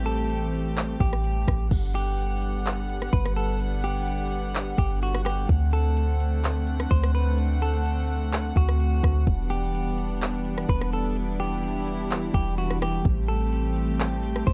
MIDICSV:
0, 0, Header, 1, 5, 480
1, 0, Start_track
1, 0, Tempo, 472441
1, 1740, Time_signature, 4, 2, 24, 8
1, 14766, End_track
2, 0, Start_track
2, 0, Title_t, "Clean electric guitar"
2, 0, Program_c, 0, 27
2, 59, Note_on_c, 0, 69, 91
2, 979, Note_off_c, 0, 69, 0
2, 1021, Note_on_c, 0, 67, 91
2, 1700, Note_off_c, 0, 67, 0
2, 1981, Note_on_c, 0, 67, 78
2, 3140, Note_off_c, 0, 67, 0
2, 3178, Note_on_c, 0, 71, 97
2, 3407, Note_off_c, 0, 71, 0
2, 3418, Note_on_c, 0, 69, 91
2, 3647, Note_off_c, 0, 69, 0
2, 3900, Note_on_c, 0, 67, 91
2, 4819, Note_off_c, 0, 67, 0
2, 4861, Note_on_c, 0, 67, 87
2, 5088, Note_off_c, 0, 67, 0
2, 5108, Note_on_c, 0, 66, 94
2, 5330, Note_off_c, 0, 66, 0
2, 5334, Note_on_c, 0, 67, 90
2, 5565, Note_off_c, 0, 67, 0
2, 5822, Note_on_c, 0, 69, 79
2, 6981, Note_off_c, 0, 69, 0
2, 7019, Note_on_c, 0, 72, 95
2, 7247, Note_off_c, 0, 72, 0
2, 7261, Note_on_c, 0, 71, 92
2, 7488, Note_off_c, 0, 71, 0
2, 7743, Note_on_c, 0, 69, 82
2, 8661, Note_off_c, 0, 69, 0
2, 8706, Note_on_c, 0, 66, 97
2, 9382, Note_off_c, 0, 66, 0
2, 9653, Note_on_c, 0, 67, 88
2, 10816, Note_off_c, 0, 67, 0
2, 10865, Note_on_c, 0, 71, 102
2, 11091, Note_off_c, 0, 71, 0
2, 11108, Note_on_c, 0, 69, 91
2, 11332, Note_off_c, 0, 69, 0
2, 11580, Note_on_c, 0, 67, 90
2, 12500, Note_off_c, 0, 67, 0
2, 12541, Note_on_c, 0, 67, 95
2, 12768, Note_off_c, 0, 67, 0
2, 12782, Note_on_c, 0, 66, 93
2, 13009, Note_off_c, 0, 66, 0
2, 13029, Note_on_c, 0, 67, 84
2, 13252, Note_off_c, 0, 67, 0
2, 13497, Note_on_c, 0, 69, 79
2, 14658, Note_off_c, 0, 69, 0
2, 14700, Note_on_c, 0, 72, 98
2, 14766, Note_off_c, 0, 72, 0
2, 14766, End_track
3, 0, Start_track
3, 0, Title_t, "String section"
3, 0, Program_c, 1, 48
3, 0, Note_on_c, 1, 52, 83
3, 0, Note_on_c, 1, 55, 75
3, 0, Note_on_c, 1, 57, 78
3, 0, Note_on_c, 1, 60, 73
3, 0, Note_on_c, 1, 67, 94
3, 1698, Note_off_c, 1, 55, 0
3, 1700, Note_off_c, 1, 52, 0
3, 1700, Note_off_c, 1, 57, 0
3, 1700, Note_off_c, 1, 60, 0
3, 1701, Note_off_c, 1, 67, 0
3, 1740, Note_on_c, 1, 50, 81
3, 1740, Note_on_c, 1, 59, 72
3, 1740, Note_on_c, 1, 78, 92
3, 1741, Note_on_c, 1, 55, 78
3, 5541, Note_off_c, 1, 59, 0
3, 5541, Note_off_c, 1, 78, 0
3, 5542, Note_off_c, 1, 55, 0
3, 5581, Note_on_c, 1, 57, 76
3, 5581, Note_on_c, 1, 60, 77
3, 5582, Note_on_c, 1, 78, 93
3, 9379, Note_off_c, 1, 50, 0
3, 9382, Note_off_c, 1, 57, 0
3, 9382, Note_off_c, 1, 60, 0
3, 9418, Note_on_c, 1, 52, 82
3, 9418, Note_on_c, 1, 59, 78
3, 9418, Note_on_c, 1, 62, 75
3, 9419, Note_on_c, 1, 55, 75
3, 11300, Note_off_c, 1, 78, 0
3, 11339, Note_on_c, 1, 64, 92
3, 13220, Note_off_c, 1, 59, 0
3, 13221, Note_off_c, 1, 62, 0
3, 13240, Note_off_c, 1, 64, 0
3, 13260, Note_on_c, 1, 57, 79
3, 13260, Note_on_c, 1, 67, 90
3, 13261, Note_on_c, 1, 60, 77
3, 14766, Note_off_c, 1, 52, 0
3, 14766, Note_off_c, 1, 55, 0
3, 14766, Note_off_c, 1, 57, 0
3, 14766, Note_off_c, 1, 60, 0
3, 14766, Note_off_c, 1, 67, 0
3, 14766, End_track
4, 0, Start_track
4, 0, Title_t, "808-style bass"
4, 0, Program_c, 2, 38
4, 0, Note_on_c, 2, 33, 103
4, 979, Note_off_c, 2, 33, 0
4, 1019, Note_on_c, 2, 33, 109
4, 1480, Note_off_c, 2, 33, 0
4, 1501, Note_on_c, 2, 33, 107
4, 1731, Note_off_c, 2, 33, 0
4, 1740, Note_on_c, 2, 31, 111
4, 3139, Note_off_c, 2, 31, 0
4, 3180, Note_on_c, 2, 31, 110
4, 4819, Note_off_c, 2, 31, 0
4, 4858, Note_on_c, 2, 31, 106
4, 5550, Note_off_c, 2, 31, 0
4, 5580, Note_on_c, 2, 38, 114
4, 6979, Note_off_c, 2, 38, 0
4, 7021, Note_on_c, 2, 38, 109
4, 8660, Note_off_c, 2, 38, 0
4, 8697, Note_on_c, 2, 38, 113
4, 9159, Note_off_c, 2, 38, 0
4, 9180, Note_on_c, 2, 38, 104
4, 9410, Note_off_c, 2, 38, 0
4, 9419, Note_on_c, 2, 28, 116
4, 10819, Note_off_c, 2, 28, 0
4, 10860, Note_on_c, 2, 28, 103
4, 12499, Note_off_c, 2, 28, 0
4, 12538, Note_on_c, 2, 28, 113
4, 13230, Note_off_c, 2, 28, 0
4, 13260, Note_on_c, 2, 33, 117
4, 14659, Note_off_c, 2, 33, 0
4, 14701, Note_on_c, 2, 33, 108
4, 14766, Note_off_c, 2, 33, 0
4, 14766, End_track
5, 0, Start_track
5, 0, Title_t, "Drums"
5, 60, Note_on_c, 9, 42, 67
5, 120, Note_off_c, 9, 42, 0
5, 120, Note_on_c, 9, 42, 60
5, 180, Note_off_c, 9, 42, 0
5, 180, Note_on_c, 9, 42, 50
5, 240, Note_off_c, 9, 42, 0
5, 240, Note_on_c, 9, 42, 40
5, 303, Note_off_c, 9, 42, 0
5, 303, Note_on_c, 9, 42, 87
5, 405, Note_off_c, 9, 42, 0
5, 539, Note_on_c, 9, 46, 55
5, 641, Note_off_c, 9, 46, 0
5, 781, Note_on_c, 9, 42, 94
5, 786, Note_on_c, 9, 39, 114
5, 882, Note_off_c, 9, 42, 0
5, 888, Note_off_c, 9, 39, 0
5, 1018, Note_on_c, 9, 36, 96
5, 1018, Note_on_c, 9, 42, 66
5, 1120, Note_off_c, 9, 36, 0
5, 1120, Note_off_c, 9, 42, 0
5, 1147, Note_on_c, 9, 37, 92
5, 1249, Note_off_c, 9, 37, 0
5, 1260, Note_on_c, 9, 42, 74
5, 1362, Note_off_c, 9, 42, 0
5, 1501, Note_on_c, 9, 36, 93
5, 1501, Note_on_c, 9, 42, 67
5, 1505, Note_on_c, 9, 37, 110
5, 1602, Note_off_c, 9, 36, 0
5, 1603, Note_off_c, 9, 42, 0
5, 1606, Note_off_c, 9, 37, 0
5, 1739, Note_on_c, 9, 42, 79
5, 1739, Note_on_c, 9, 49, 108
5, 1740, Note_on_c, 9, 36, 127
5, 1841, Note_off_c, 9, 36, 0
5, 1841, Note_off_c, 9, 42, 0
5, 1841, Note_off_c, 9, 49, 0
5, 1978, Note_on_c, 9, 42, 65
5, 2080, Note_off_c, 9, 42, 0
5, 2222, Note_on_c, 9, 42, 90
5, 2324, Note_off_c, 9, 42, 0
5, 2459, Note_on_c, 9, 42, 74
5, 2561, Note_off_c, 9, 42, 0
5, 2701, Note_on_c, 9, 42, 101
5, 2707, Note_on_c, 9, 39, 112
5, 2803, Note_off_c, 9, 42, 0
5, 2809, Note_off_c, 9, 39, 0
5, 2938, Note_on_c, 9, 42, 66
5, 3040, Note_off_c, 9, 42, 0
5, 3067, Note_on_c, 9, 37, 89
5, 3168, Note_off_c, 9, 37, 0
5, 3179, Note_on_c, 9, 42, 75
5, 3180, Note_on_c, 9, 36, 109
5, 3281, Note_off_c, 9, 42, 0
5, 3282, Note_off_c, 9, 36, 0
5, 3307, Note_on_c, 9, 37, 98
5, 3409, Note_off_c, 9, 37, 0
5, 3421, Note_on_c, 9, 42, 70
5, 3523, Note_off_c, 9, 42, 0
5, 3659, Note_on_c, 9, 42, 78
5, 3761, Note_off_c, 9, 42, 0
5, 3898, Note_on_c, 9, 42, 65
5, 4000, Note_off_c, 9, 42, 0
5, 4143, Note_on_c, 9, 42, 87
5, 4244, Note_off_c, 9, 42, 0
5, 4379, Note_on_c, 9, 42, 76
5, 4481, Note_off_c, 9, 42, 0
5, 4620, Note_on_c, 9, 42, 96
5, 4626, Note_on_c, 9, 39, 114
5, 4722, Note_off_c, 9, 42, 0
5, 4727, Note_off_c, 9, 39, 0
5, 4858, Note_on_c, 9, 36, 95
5, 4858, Note_on_c, 9, 42, 68
5, 4960, Note_off_c, 9, 36, 0
5, 4960, Note_off_c, 9, 42, 0
5, 5100, Note_on_c, 9, 42, 77
5, 5202, Note_off_c, 9, 42, 0
5, 5228, Note_on_c, 9, 37, 98
5, 5330, Note_off_c, 9, 37, 0
5, 5341, Note_on_c, 9, 42, 72
5, 5345, Note_on_c, 9, 37, 109
5, 5443, Note_off_c, 9, 42, 0
5, 5447, Note_off_c, 9, 37, 0
5, 5580, Note_on_c, 9, 36, 125
5, 5580, Note_on_c, 9, 42, 78
5, 5681, Note_off_c, 9, 42, 0
5, 5682, Note_off_c, 9, 36, 0
5, 5819, Note_on_c, 9, 42, 68
5, 5921, Note_off_c, 9, 42, 0
5, 6063, Note_on_c, 9, 42, 88
5, 6165, Note_off_c, 9, 42, 0
5, 6300, Note_on_c, 9, 42, 75
5, 6402, Note_off_c, 9, 42, 0
5, 6542, Note_on_c, 9, 42, 101
5, 6547, Note_on_c, 9, 39, 114
5, 6643, Note_off_c, 9, 42, 0
5, 6649, Note_off_c, 9, 39, 0
5, 6778, Note_on_c, 9, 42, 66
5, 6880, Note_off_c, 9, 42, 0
5, 6906, Note_on_c, 9, 37, 96
5, 7008, Note_off_c, 9, 37, 0
5, 7020, Note_on_c, 9, 36, 105
5, 7020, Note_on_c, 9, 42, 76
5, 7122, Note_off_c, 9, 36, 0
5, 7122, Note_off_c, 9, 42, 0
5, 7148, Note_on_c, 9, 37, 96
5, 7250, Note_off_c, 9, 37, 0
5, 7261, Note_on_c, 9, 42, 74
5, 7363, Note_off_c, 9, 42, 0
5, 7499, Note_on_c, 9, 42, 79
5, 7601, Note_off_c, 9, 42, 0
5, 7740, Note_on_c, 9, 42, 65
5, 7800, Note_off_c, 9, 42, 0
5, 7800, Note_on_c, 9, 42, 58
5, 7860, Note_off_c, 9, 42, 0
5, 7860, Note_on_c, 9, 42, 50
5, 7921, Note_off_c, 9, 42, 0
5, 7921, Note_on_c, 9, 42, 42
5, 7983, Note_off_c, 9, 42, 0
5, 7983, Note_on_c, 9, 42, 87
5, 8084, Note_off_c, 9, 42, 0
5, 8218, Note_on_c, 9, 46, 52
5, 8320, Note_off_c, 9, 46, 0
5, 8460, Note_on_c, 9, 42, 95
5, 8466, Note_on_c, 9, 39, 117
5, 8562, Note_off_c, 9, 42, 0
5, 8567, Note_off_c, 9, 39, 0
5, 8697, Note_on_c, 9, 36, 96
5, 8697, Note_on_c, 9, 42, 65
5, 8798, Note_off_c, 9, 36, 0
5, 8798, Note_off_c, 9, 42, 0
5, 8825, Note_on_c, 9, 37, 92
5, 8927, Note_off_c, 9, 37, 0
5, 8940, Note_on_c, 9, 42, 73
5, 9042, Note_off_c, 9, 42, 0
5, 9180, Note_on_c, 9, 36, 94
5, 9180, Note_on_c, 9, 42, 68
5, 9184, Note_on_c, 9, 37, 106
5, 9282, Note_off_c, 9, 36, 0
5, 9282, Note_off_c, 9, 42, 0
5, 9286, Note_off_c, 9, 37, 0
5, 9418, Note_on_c, 9, 42, 77
5, 9419, Note_on_c, 9, 36, 126
5, 9520, Note_off_c, 9, 36, 0
5, 9520, Note_off_c, 9, 42, 0
5, 9658, Note_on_c, 9, 42, 64
5, 9760, Note_off_c, 9, 42, 0
5, 9902, Note_on_c, 9, 42, 86
5, 10003, Note_off_c, 9, 42, 0
5, 10139, Note_on_c, 9, 42, 74
5, 10240, Note_off_c, 9, 42, 0
5, 10380, Note_on_c, 9, 42, 97
5, 10386, Note_on_c, 9, 39, 121
5, 10482, Note_off_c, 9, 42, 0
5, 10487, Note_off_c, 9, 39, 0
5, 10618, Note_on_c, 9, 42, 66
5, 10719, Note_off_c, 9, 42, 0
5, 10746, Note_on_c, 9, 37, 94
5, 10848, Note_off_c, 9, 37, 0
5, 10859, Note_on_c, 9, 42, 73
5, 10860, Note_on_c, 9, 36, 103
5, 10960, Note_off_c, 9, 42, 0
5, 10962, Note_off_c, 9, 36, 0
5, 10987, Note_on_c, 9, 37, 96
5, 11089, Note_off_c, 9, 37, 0
5, 11101, Note_on_c, 9, 42, 74
5, 11203, Note_off_c, 9, 42, 0
5, 11340, Note_on_c, 9, 42, 78
5, 11441, Note_off_c, 9, 42, 0
5, 11579, Note_on_c, 9, 42, 68
5, 11681, Note_off_c, 9, 42, 0
5, 11824, Note_on_c, 9, 42, 84
5, 11925, Note_off_c, 9, 42, 0
5, 12060, Note_on_c, 9, 42, 73
5, 12162, Note_off_c, 9, 42, 0
5, 12302, Note_on_c, 9, 42, 96
5, 12307, Note_on_c, 9, 39, 113
5, 12403, Note_off_c, 9, 42, 0
5, 12409, Note_off_c, 9, 39, 0
5, 12538, Note_on_c, 9, 36, 95
5, 12538, Note_on_c, 9, 42, 64
5, 12640, Note_off_c, 9, 36, 0
5, 12640, Note_off_c, 9, 42, 0
5, 12781, Note_on_c, 9, 42, 76
5, 12883, Note_off_c, 9, 42, 0
5, 12908, Note_on_c, 9, 37, 94
5, 13010, Note_off_c, 9, 37, 0
5, 13022, Note_on_c, 9, 42, 72
5, 13026, Note_on_c, 9, 37, 107
5, 13124, Note_off_c, 9, 42, 0
5, 13127, Note_off_c, 9, 37, 0
5, 13260, Note_on_c, 9, 36, 126
5, 13261, Note_on_c, 9, 42, 77
5, 13362, Note_off_c, 9, 36, 0
5, 13362, Note_off_c, 9, 42, 0
5, 13499, Note_on_c, 9, 42, 66
5, 13601, Note_off_c, 9, 42, 0
5, 13743, Note_on_c, 9, 42, 83
5, 13845, Note_off_c, 9, 42, 0
5, 13980, Note_on_c, 9, 42, 74
5, 14081, Note_off_c, 9, 42, 0
5, 14221, Note_on_c, 9, 42, 96
5, 14227, Note_on_c, 9, 39, 121
5, 14323, Note_off_c, 9, 42, 0
5, 14329, Note_off_c, 9, 39, 0
5, 14458, Note_on_c, 9, 42, 65
5, 14560, Note_off_c, 9, 42, 0
5, 14587, Note_on_c, 9, 37, 93
5, 14689, Note_off_c, 9, 37, 0
5, 14701, Note_on_c, 9, 36, 105
5, 14701, Note_on_c, 9, 42, 75
5, 14766, Note_off_c, 9, 36, 0
5, 14766, Note_off_c, 9, 42, 0
5, 14766, End_track
0, 0, End_of_file